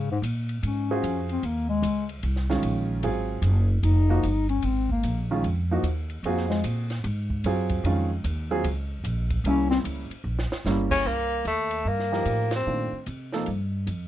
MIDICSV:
0, 0, Header, 1, 7, 480
1, 0, Start_track
1, 0, Tempo, 401338
1, 1710, Time_signature, 4, 2, 24, 8
1, 16837, End_track
2, 0, Start_track
2, 0, Title_t, "Grand piano"
2, 0, Program_c, 0, 0
2, 1087, Note_on_c, 0, 66, 76
2, 1088, Note_on_c, 0, 68, 80
2, 1089, Note_on_c, 0, 72, 69
2, 1094, Note_on_c, 0, 65, 64
2, 1690, Note_off_c, 0, 66, 0
2, 1691, Note_off_c, 0, 68, 0
2, 1691, Note_off_c, 0, 72, 0
2, 1693, Note_off_c, 0, 65, 0
2, 2984, Note_on_c, 0, 51, 84
2, 2990, Note_on_c, 0, 56, 82
2, 2991, Note_on_c, 0, 61, 79
2, 2993, Note_on_c, 0, 65, 84
2, 3597, Note_off_c, 0, 51, 0
2, 3600, Note_off_c, 0, 56, 0
2, 3601, Note_off_c, 0, 61, 0
2, 3602, Note_off_c, 0, 65, 0
2, 3625, Note_on_c, 0, 54, 68
2, 3631, Note_on_c, 0, 60, 65
2, 3632, Note_on_c, 0, 65, 63
2, 3636, Note_on_c, 0, 68, 73
2, 4354, Note_off_c, 0, 54, 0
2, 4358, Note_off_c, 0, 60, 0
2, 4358, Note_off_c, 0, 65, 0
2, 4360, Note_off_c, 0, 68, 0
2, 4898, Note_on_c, 0, 53, 78
2, 4903, Note_on_c, 0, 58, 73
2, 4906, Note_on_c, 0, 66, 89
2, 4907, Note_on_c, 0, 63, 68
2, 5051, Note_off_c, 0, 53, 0
2, 5053, Note_off_c, 0, 58, 0
2, 5055, Note_off_c, 0, 66, 0
2, 5056, Note_off_c, 0, 63, 0
2, 6349, Note_on_c, 0, 51, 81
2, 6351, Note_on_c, 0, 61, 65
2, 6354, Note_on_c, 0, 65, 86
2, 6356, Note_on_c, 0, 56, 69
2, 6496, Note_off_c, 0, 51, 0
2, 6497, Note_off_c, 0, 61, 0
2, 6499, Note_off_c, 0, 65, 0
2, 6500, Note_off_c, 0, 56, 0
2, 6832, Note_on_c, 0, 53, 76
2, 6834, Note_on_c, 0, 58, 66
2, 6836, Note_on_c, 0, 63, 70
2, 6846, Note_on_c, 0, 66, 81
2, 6977, Note_off_c, 0, 53, 0
2, 6979, Note_off_c, 0, 58, 0
2, 6979, Note_off_c, 0, 63, 0
2, 6984, Note_off_c, 0, 66, 0
2, 7480, Note_on_c, 0, 60, 69
2, 7485, Note_on_c, 0, 66, 78
2, 7487, Note_on_c, 0, 68, 77
2, 7489, Note_on_c, 0, 65, 68
2, 8201, Note_off_c, 0, 60, 0
2, 8203, Note_off_c, 0, 66, 0
2, 8204, Note_off_c, 0, 68, 0
2, 8205, Note_off_c, 0, 65, 0
2, 8917, Note_on_c, 0, 54, 72
2, 8921, Note_on_c, 0, 65, 70
2, 8922, Note_on_c, 0, 60, 70
2, 8925, Note_on_c, 0, 68, 75
2, 9384, Note_off_c, 0, 65, 0
2, 9393, Note_on_c, 0, 51, 79
2, 9396, Note_on_c, 0, 56, 72
2, 9396, Note_on_c, 0, 61, 61
2, 9402, Note_on_c, 0, 65, 79
2, 9639, Note_off_c, 0, 54, 0
2, 9641, Note_off_c, 0, 60, 0
2, 9643, Note_off_c, 0, 68, 0
2, 9668, Note_off_c, 0, 51, 0
2, 9669, Note_off_c, 0, 56, 0
2, 9669, Note_off_c, 0, 61, 0
2, 9672, Note_off_c, 0, 65, 0
2, 10176, Note_on_c, 0, 60, 67
2, 10177, Note_on_c, 0, 54, 83
2, 10180, Note_on_c, 0, 65, 70
2, 10181, Note_on_c, 0, 68, 90
2, 10329, Note_off_c, 0, 54, 0
2, 10329, Note_off_c, 0, 60, 0
2, 10330, Note_off_c, 0, 65, 0
2, 10331, Note_off_c, 0, 68, 0
2, 11312, Note_on_c, 0, 58, 61
2, 11314, Note_on_c, 0, 55, 66
2, 11323, Note_on_c, 0, 64, 75
2, 11325, Note_on_c, 0, 61, 60
2, 12037, Note_off_c, 0, 58, 0
2, 12038, Note_off_c, 0, 55, 0
2, 12042, Note_off_c, 0, 64, 0
2, 12043, Note_off_c, 0, 61, 0
2, 12750, Note_on_c, 0, 58, 73
2, 12756, Note_on_c, 0, 55, 83
2, 12758, Note_on_c, 0, 64, 80
2, 12761, Note_on_c, 0, 61, 71
2, 13229, Note_off_c, 0, 58, 0
2, 13231, Note_off_c, 0, 55, 0
2, 13232, Note_off_c, 0, 64, 0
2, 13234, Note_off_c, 0, 61, 0
2, 14494, Note_on_c, 0, 53, 67
2, 14494, Note_on_c, 0, 63, 59
2, 14499, Note_on_c, 0, 67, 74
2, 14500, Note_on_c, 0, 70, 64
2, 15115, Note_off_c, 0, 53, 0
2, 15115, Note_off_c, 0, 63, 0
2, 15117, Note_off_c, 0, 67, 0
2, 15118, Note_off_c, 0, 70, 0
2, 15151, Note_on_c, 0, 62, 42
2, 15152, Note_on_c, 0, 57, 45
2, 15153, Note_on_c, 0, 51, 51
2, 15155, Note_on_c, 0, 65, 50
2, 15431, Note_off_c, 0, 57, 0
2, 15431, Note_off_c, 0, 62, 0
2, 15432, Note_off_c, 0, 51, 0
2, 15433, Note_off_c, 0, 65, 0
2, 15949, Note_on_c, 0, 53, 65
2, 15954, Note_on_c, 0, 69, 76
2, 15962, Note_on_c, 0, 63, 61
2, 15963, Note_on_c, 0, 58, 65
2, 16100, Note_off_c, 0, 53, 0
2, 16102, Note_off_c, 0, 69, 0
2, 16107, Note_off_c, 0, 58, 0
2, 16107, Note_off_c, 0, 63, 0
2, 16837, End_track
3, 0, Start_track
3, 0, Title_t, "Bass clarinet"
3, 0, Program_c, 1, 71
3, 138, Note_on_c, 1, 44, 93
3, 229, Note_off_c, 1, 44, 0
3, 795, Note_on_c, 1, 61, 78
3, 1515, Note_off_c, 1, 61, 0
3, 1575, Note_on_c, 1, 60, 88
3, 1737, Note_on_c, 1, 58, 84
3, 1755, Note_off_c, 1, 60, 0
3, 2017, Note_off_c, 1, 58, 0
3, 2024, Note_on_c, 1, 56, 104
3, 2469, Note_off_c, 1, 56, 0
3, 4593, Note_on_c, 1, 63, 101
3, 5332, Note_off_c, 1, 63, 0
3, 5376, Note_on_c, 1, 61, 95
3, 5558, Note_on_c, 1, 60, 89
3, 5576, Note_off_c, 1, 61, 0
3, 5862, Note_off_c, 1, 60, 0
3, 5875, Note_on_c, 1, 58, 95
3, 6313, Note_off_c, 1, 58, 0
3, 7468, Note_on_c, 1, 58, 80
3, 7751, Note_off_c, 1, 58, 0
3, 7758, Note_on_c, 1, 56, 98
3, 7924, Note_off_c, 1, 56, 0
3, 11302, Note_on_c, 1, 61, 103
3, 11591, Note_off_c, 1, 61, 0
3, 11603, Note_on_c, 1, 60, 112
3, 11709, Note_off_c, 1, 60, 0
3, 16837, End_track
4, 0, Start_track
4, 0, Title_t, "Tenor saxophone"
4, 0, Program_c, 2, 66
4, 13049, Note_on_c, 2, 61, 106
4, 13241, Note_on_c, 2, 58, 91
4, 13259, Note_off_c, 2, 61, 0
4, 13715, Note_off_c, 2, 58, 0
4, 13725, Note_on_c, 2, 57, 78
4, 14208, Note_on_c, 2, 58, 83
4, 14226, Note_off_c, 2, 57, 0
4, 14991, Note_off_c, 2, 58, 0
4, 15015, Note_on_c, 2, 60, 84
4, 15606, Note_off_c, 2, 60, 0
4, 16837, End_track
5, 0, Start_track
5, 0, Title_t, "Upright bass"
5, 0, Program_c, 3, 32
5, 0, Note_on_c, 3, 44, 82
5, 255, Note_off_c, 3, 44, 0
5, 263, Note_on_c, 3, 46, 89
5, 733, Note_off_c, 3, 46, 0
5, 749, Note_on_c, 3, 44, 82
5, 1215, Note_off_c, 3, 44, 0
5, 1224, Note_on_c, 3, 41, 87
5, 1693, Note_off_c, 3, 41, 0
5, 1705, Note_on_c, 3, 39, 78
5, 2173, Note_off_c, 3, 39, 0
5, 2180, Note_on_c, 3, 37, 96
5, 2651, Note_off_c, 3, 37, 0
5, 2669, Note_on_c, 3, 36, 95
5, 3130, Note_off_c, 3, 36, 0
5, 3137, Note_on_c, 3, 34, 83
5, 3609, Note_off_c, 3, 34, 0
5, 3618, Note_on_c, 3, 32, 77
5, 4082, Note_off_c, 3, 32, 0
5, 4089, Note_on_c, 3, 30, 98
5, 4564, Note_off_c, 3, 30, 0
5, 4579, Note_on_c, 3, 29, 99
5, 5049, Note_off_c, 3, 29, 0
5, 5067, Note_on_c, 3, 31, 84
5, 5533, Note_off_c, 3, 31, 0
5, 5545, Note_on_c, 3, 32, 90
5, 6011, Note_off_c, 3, 32, 0
5, 6024, Note_on_c, 3, 34, 95
5, 6488, Note_off_c, 3, 34, 0
5, 6495, Note_on_c, 3, 41, 88
5, 6962, Note_off_c, 3, 41, 0
5, 6969, Note_on_c, 3, 39, 85
5, 7443, Note_off_c, 3, 39, 0
5, 7449, Note_on_c, 3, 41, 76
5, 7923, Note_off_c, 3, 41, 0
5, 7940, Note_on_c, 3, 46, 94
5, 8408, Note_off_c, 3, 46, 0
5, 8418, Note_on_c, 3, 44, 95
5, 8887, Note_off_c, 3, 44, 0
5, 8897, Note_on_c, 3, 42, 84
5, 9366, Note_off_c, 3, 42, 0
5, 9372, Note_on_c, 3, 41, 91
5, 9844, Note_off_c, 3, 41, 0
5, 9855, Note_on_c, 3, 39, 96
5, 10325, Note_off_c, 3, 39, 0
5, 10333, Note_on_c, 3, 37, 96
5, 10799, Note_off_c, 3, 37, 0
5, 10806, Note_on_c, 3, 34, 92
5, 11281, Note_off_c, 3, 34, 0
5, 11289, Note_on_c, 3, 36, 84
5, 11763, Note_off_c, 3, 36, 0
5, 11770, Note_on_c, 3, 37, 94
5, 12065, Note_off_c, 3, 37, 0
5, 12245, Note_on_c, 3, 34, 90
5, 12543, Note_off_c, 3, 34, 0
5, 12732, Note_on_c, 3, 31, 80
5, 13205, Note_off_c, 3, 31, 0
5, 13217, Note_on_c, 3, 36, 70
5, 13683, Note_off_c, 3, 36, 0
5, 13690, Note_on_c, 3, 39, 85
5, 14165, Note_off_c, 3, 39, 0
5, 14171, Note_on_c, 3, 43, 80
5, 14647, Note_off_c, 3, 43, 0
5, 14654, Note_on_c, 3, 45, 75
5, 15129, Note_off_c, 3, 45, 0
5, 15146, Note_on_c, 3, 46, 75
5, 15437, Note_off_c, 3, 46, 0
5, 15625, Note_on_c, 3, 48, 84
5, 16096, Note_off_c, 3, 48, 0
5, 16115, Note_on_c, 3, 43, 83
5, 16577, Note_off_c, 3, 43, 0
5, 16585, Note_on_c, 3, 41, 74
5, 16837, Note_off_c, 3, 41, 0
5, 16837, End_track
6, 0, Start_track
6, 0, Title_t, "Muted upright bass strokes"
6, 12075, Note_on_c, 9, 29, 38
6, 12194, Note_off_c, 9, 29, 0
6, 12570, Note_on_c, 9, 29, 39
6, 12690, Note_off_c, 9, 29, 0
6, 15450, Note_on_c, 9, 29, 36
6, 15570, Note_off_c, 9, 29, 0
6, 16837, End_track
7, 0, Start_track
7, 0, Title_t, "Drums"
7, 280, Note_on_c, 9, 44, 57
7, 280, Note_on_c, 9, 51, 83
7, 399, Note_off_c, 9, 44, 0
7, 399, Note_off_c, 9, 51, 0
7, 585, Note_on_c, 9, 51, 46
7, 704, Note_off_c, 9, 51, 0
7, 755, Note_on_c, 9, 51, 71
7, 874, Note_off_c, 9, 51, 0
7, 1239, Note_on_c, 9, 44, 55
7, 1239, Note_on_c, 9, 51, 71
7, 1358, Note_off_c, 9, 44, 0
7, 1358, Note_off_c, 9, 51, 0
7, 1544, Note_on_c, 9, 51, 46
7, 1663, Note_off_c, 9, 51, 0
7, 1711, Note_on_c, 9, 51, 68
7, 1830, Note_off_c, 9, 51, 0
7, 2191, Note_on_c, 9, 44, 62
7, 2191, Note_on_c, 9, 51, 80
7, 2311, Note_off_c, 9, 44, 0
7, 2311, Note_off_c, 9, 51, 0
7, 2500, Note_on_c, 9, 51, 47
7, 2620, Note_off_c, 9, 51, 0
7, 2663, Note_on_c, 9, 51, 66
7, 2783, Note_off_c, 9, 51, 0
7, 2824, Note_on_c, 9, 38, 28
7, 2943, Note_off_c, 9, 38, 0
7, 2988, Note_on_c, 9, 38, 46
7, 3108, Note_off_c, 9, 38, 0
7, 3141, Note_on_c, 9, 44, 61
7, 3141, Note_on_c, 9, 51, 68
7, 3261, Note_off_c, 9, 44, 0
7, 3261, Note_off_c, 9, 51, 0
7, 3622, Note_on_c, 9, 51, 72
7, 3742, Note_off_c, 9, 51, 0
7, 4094, Note_on_c, 9, 44, 65
7, 4094, Note_on_c, 9, 51, 74
7, 4213, Note_off_c, 9, 44, 0
7, 4213, Note_off_c, 9, 51, 0
7, 4583, Note_on_c, 9, 51, 69
7, 4702, Note_off_c, 9, 51, 0
7, 5062, Note_on_c, 9, 44, 50
7, 5062, Note_on_c, 9, 51, 70
7, 5182, Note_off_c, 9, 44, 0
7, 5182, Note_off_c, 9, 51, 0
7, 5369, Note_on_c, 9, 51, 49
7, 5489, Note_off_c, 9, 51, 0
7, 5530, Note_on_c, 9, 51, 71
7, 5650, Note_off_c, 9, 51, 0
7, 5851, Note_on_c, 9, 36, 52
7, 5971, Note_off_c, 9, 36, 0
7, 6019, Note_on_c, 9, 44, 64
7, 6019, Note_on_c, 9, 51, 71
7, 6139, Note_off_c, 9, 44, 0
7, 6139, Note_off_c, 9, 51, 0
7, 6506, Note_on_c, 9, 51, 61
7, 6626, Note_off_c, 9, 51, 0
7, 6980, Note_on_c, 9, 44, 52
7, 6980, Note_on_c, 9, 51, 74
7, 7100, Note_off_c, 9, 44, 0
7, 7100, Note_off_c, 9, 51, 0
7, 7291, Note_on_c, 9, 51, 51
7, 7410, Note_off_c, 9, 51, 0
7, 7461, Note_on_c, 9, 51, 74
7, 7581, Note_off_c, 9, 51, 0
7, 7621, Note_on_c, 9, 38, 30
7, 7740, Note_off_c, 9, 38, 0
7, 7781, Note_on_c, 9, 38, 48
7, 7901, Note_off_c, 9, 38, 0
7, 7940, Note_on_c, 9, 44, 66
7, 7940, Note_on_c, 9, 51, 75
7, 8060, Note_off_c, 9, 44, 0
7, 8060, Note_off_c, 9, 51, 0
7, 8251, Note_on_c, 9, 51, 52
7, 8257, Note_on_c, 9, 38, 38
7, 8371, Note_off_c, 9, 51, 0
7, 8377, Note_off_c, 9, 38, 0
7, 8419, Note_on_c, 9, 51, 64
7, 8539, Note_off_c, 9, 51, 0
7, 8732, Note_on_c, 9, 36, 56
7, 8852, Note_off_c, 9, 36, 0
7, 8897, Note_on_c, 9, 44, 69
7, 8897, Note_on_c, 9, 51, 74
7, 9017, Note_off_c, 9, 44, 0
7, 9017, Note_off_c, 9, 51, 0
7, 9202, Note_on_c, 9, 51, 55
7, 9212, Note_on_c, 9, 36, 70
7, 9321, Note_off_c, 9, 51, 0
7, 9331, Note_off_c, 9, 36, 0
7, 9383, Note_on_c, 9, 51, 72
7, 9503, Note_off_c, 9, 51, 0
7, 9858, Note_on_c, 9, 44, 70
7, 9858, Note_on_c, 9, 51, 71
7, 9978, Note_off_c, 9, 44, 0
7, 9978, Note_off_c, 9, 51, 0
7, 10336, Note_on_c, 9, 51, 75
7, 10456, Note_off_c, 9, 51, 0
7, 10816, Note_on_c, 9, 44, 62
7, 10816, Note_on_c, 9, 51, 77
7, 10936, Note_off_c, 9, 44, 0
7, 10936, Note_off_c, 9, 51, 0
7, 11125, Note_on_c, 9, 51, 54
7, 11129, Note_on_c, 9, 36, 73
7, 11245, Note_off_c, 9, 51, 0
7, 11249, Note_off_c, 9, 36, 0
7, 11298, Note_on_c, 9, 51, 68
7, 11417, Note_off_c, 9, 51, 0
7, 11616, Note_on_c, 9, 38, 61
7, 11736, Note_off_c, 9, 38, 0
7, 11780, Note_on_c, 9, 44, 57
7, 11780, Note_on_c, 9, 51, 83
7, 11900, Note_off_c, 9, 44, 0
7, 11900, Note_off_c, 9, 51, 0
7, 12092, Note_on_c, 9, 51, 52
7, 12212, Note_off_c, 9, 51, 0
7, 12422, Note_on_c, 9, 38, 66
7, 12542, Note_off_c, 9, 38, 0
7, 12582, Note_on_c, 9, 38, 91
7, 12702, Note_off_c, 9, 38, 0
7, 12739, Note_on_c, 9, 44, 55
7, 12745, Note_on_c, 9, 38, 61
7, 12859, Note_off_c, 9, 44, 0
7, 12865, Note_off_c, 9, 38, 0
7, 13049, Note_on_c, 9, 36, 82
7, 13056, Note_on_c, 9, 49, 88
7, 13169, Note_off_c, 9, 36, 0
7, 13176, Note_off_c, 9, 49, 0
7, 13695, Note_on_c, 9, 44, 50
7, 13695, Note_on_c, 9, 51, 64
7, 13814, Note_off_c, 9, 44, 0
7, 13814, Note_off_c, 9, 51, 0
7, 14002, Note_on_c, 9, 51, 56
7, 14121, Note_off_c, 9, 51, 0
7, 14345, Note_on_c, 9, 38, 27
7, 14464, Note_off_c, 9, 38, 0
7, 14508, Note_on_c, 9, 38, 37
7, 14627, Note_off_c, 9, 38, 0
7, 14656, Note_on_c, 9, 44, 62
7, 14656, Note_on_c, 9, 51, 66
7, 14775, Note_off_c, 9, 44, 0
7, 14775, Note_off_c, 9, 51, 0
7, 14960, Note_on_c, 9, 51, 61
7, 14966, Note_on_c, 9, 38, 77
7, 15080, Note_off_c, 9, 51, 0
7, 15086, Note_off_c, 9, 38, 0
7, 15623, Note_on_c, 9, 44, 58
7, 15623, Note_on_c, 9, 51, 63
7, 15742, Note_off_c, 9, 44, 0
7, 15742, Note_off_c, 9, 51, 0
7, 15937, Note_on_c, 9, 38, 47
7, 16056, Note_off_c, 9, 38, 0
7, 16099, Note_on_c, 9, 51, 58
7, 16219, Note_off_c, 9, 51, 0
7, 16589, Note_on_c, 9, 44, 56
7, 16589, Note_on_c, 9, 51, 62
7, 16708, Note_off_c, 9, 44, 0
7, 16708, Note_off_c, 9, 51, 0
7, 16837, End_track
0, 0, End_of_file